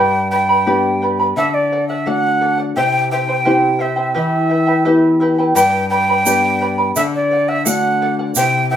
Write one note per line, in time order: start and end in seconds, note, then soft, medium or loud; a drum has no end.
0.00 1.32 G2 medium
0.00 0.31 G4 medium
0.00 0.31 B4 medium
0.00 0.31 D5 medium
0.00 0.30 G5 medium
0.00 0.30 G5 loud
0.00 0.31 B5 medium
0.31 0.49 B4 medium
0.31 0.48 D5 medium
0.31 1.05 G5 medium
0.31 0.49 G5 soft
0.31 0.48 B5 medium
0.49 0.65 B4 soft
0.49 0.66 D5 soft
0.49 0.66 B5 medium
0.66 1.34 B3 soft
0.66 1.34 D4 soft
0.66 1.01 G4 medium
0.66 1.35 G4 medium
0.66 1.01 B4 medium
0.66 1.02 D5 medium
0.66 1.01 G5 medium
0.66 1.02 B5 medium
1.02 1.19 B4 medium
1.02 1.19 D5 medium
1.02 1.19 G5 medium
1.02 1.18 B5 medium
1.20 1.37 B4 soft
1.20 1.37 D5 soft
1.20 1.37 B5 medium
1.37 2.73 D3 medium
1.37 1.71 A4 medium
1.37 1.72 D5 medium
1.37 1.56 E5 medium
1.37 1.72 F#5 medium
1.54 1.88 D5 medium
1.72 1.89 A4 medium
1.72 1.90 D5 medium
1.72 1.88 F#5 medium
1.88 2.05 D5 soft
1.88 2.09 E5 medium
1.88 2.06 F#5 medium
2.06 2.75 A3 soft
2.06 2.74 D4 soft
2.06 2.75 F#4 medium
2.06 2.40 A4 medium
2.06 2.40 D5 medium
2.06 2.41 F#5 medium
2.06 2.60 F#5 medium
2.41 2.59 A4 medium
2.41 2.58 D5 medium
2.41 2.57 F#5 medium
2.58 2.77 D5 soft
2.58 2.76 F#5 soft
2.76 4.13 C3 medium
2.76 3.12 E4 medium
2.76 3.11 G4 medium
2.76 3.12 C5 medium
2.76 3.10 E5 medium
2.76 3.09 G5 loud
2.76 3.12 G5 medium
3.11 3.28 E4 medium
3.11 3.27 C5 medium
3.11 3.29 E5 medium
3.11 3.83 G5 medium
3.11 3.27 G5 medium
3.28 3.44 E4 soft
3.28 3.44 C5 medium
3.28 3.45 G5 soft
3.45 4.14 C4 soft
3.45 3.78 E4 medium
3.45 4.14 E4 soft
3.45 3.81 G4 medium
3.45 4.15 G4 soft
3.45 3.79 C5 medium
3.45 3.78 E5 medium
3.45 3.79 G5 medium
3.79 3.96 E4 medium
3.79 3.96 C5 medium
3.79 3.98 E5 medium
3.79 4.16 E5 medium
3.79 3.95 G5 medium
3.96 4.14 E4 soft
3.96 4.14 C5 soft
3.96 4.14 G5 medium
4.14 5.52 E3 medium
4.14 4.49 E4 medium
4.14 4.50 G4 medium
4.14 4.49 B4 medium
4.14 4.48 E5 medium
4.14 5.18 E5 medium
4.14 4.49 G5 medium
4.49 4.67 E4 medium
4.49 4.67 B4 medium
4.49 4.68 E5 medium
4.49 4.66 G5 medium
4.67 4.84 E4 soft
4.67 4.85 B4 soft
4.67 4.85 G5 soft
4.85 5.54 B3 soft
4.85 5.20 E4 medium
4.85 5.54 E4 soft
4.85 5.21 G4 medium
4.85 5.54 G4 soft
4.85 5.20 B4 medium
4.85 5.19 E5 medium
4.85 5.21 G5 medium
5.20 5.39 E4 medium
5.20 5.38 B4 medium
5.20 5.38 E5 medium
5.20 5.37 G5 medium
5.38 5.56 E4 soft
5.38 5.55 B4 medium
5.38 5.55 G5 medium
5.55 6.91 G2 medium
5.55 5.91 G4 medium
5.55 5.90 B4 medium
5.55 5.90 D5 medium
5.55 5.88 G5 loud
5.55 5.89 G5 medium
5.55 5.91 B5 medium
5.55 shaker medium
5.90 6.09 B4 medium
5.90 6.09 D5 medium
5.90 6.91 G5 loud
5.90 6.08 G5 medium
5.90 6.08 B5 medium
6.09 6.25 B4 soft
6.09 6.26 D5 soft
6.09 6.26 B5 medium
6.25 6.93 B3 soft
6.25 6.94 D4 soft
6.25 6.61 G4 medium
6.25 6.94 G4 medium
6.25 6.60 B4 medium
6.25 6.61 D5 medium
6.25 6.59 G5 medium
6.25 6.61 B5 medium
6.25 shaker medium
6.61 6.78 B4 medium
6.61 6.78 D5 medium
6.61 6.78 G5 medium
6.61 6.77 B5 medium
6.78 6.96 B4 soft
6.78 6.95 D5 soft
6.78 6.96 B5 medium
6.96 8.32 D3 medium
6.96 7.30 A4 medium
6.96 7.30 D5 medium
6.96 7.02 E5 loud
6.96 7.31 F#5 medium
6.96 shaker medium
7.15 7.50 D5 medium
7.31 7.48 A4 medium
7.31 7.49 D5 medium
7.31 7.47 F#5 medium
7.48 7.64 D5 soft
7.48 7.66 E5 medium
7.48 7.65 F#5 medium
7.65 8.33 A3 soft
7.65 8.34 D4 soft
7.65 8.34 F#4 medium
7.65 8.00 A4 medium
7.65 8.01 D5 medium
7.65 8.01 F#5 medium
7.65 8.15 F#5 medium
7.65 shaker medium
8.02 8.19 A4 medium
8.02 8.19 D5 medium
8.02 8.18 F#5 medium
8.19 8.37 D5 soft
8.19 8.36 F#5 medium
8.35 8.77 C3 medium
8.35 8.71 E4 medium
8.35 8.71 G4 medium
8.35 8.71 C5 medium
8.35 8.70 E5 medium
8.35 8.69 G5 loud
8.35 8.71 G5 medium
8.35 shaker medium
8.71 8.77 E4 medium
8.71 8.77 C5 medium
8.71 8.77 E5 medium
8.71 8.77 G5 loud
8.71 8.77 G5 medium